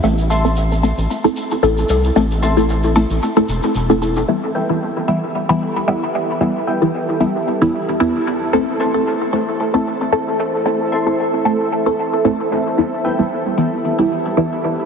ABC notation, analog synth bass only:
X:1
M:4/4
L:1/16
Q:"Swing 16ths" 1/4=113
K:Em
V:1 name="Analog synth bass" clef=bass
A,,,6- A,,, A,,, z4 A,,,2 C,,2 | A,,,6- A,,, A,,, z2 E,,, z E,,,4 | z16 | z16 |
z16 | z16 | z16 |]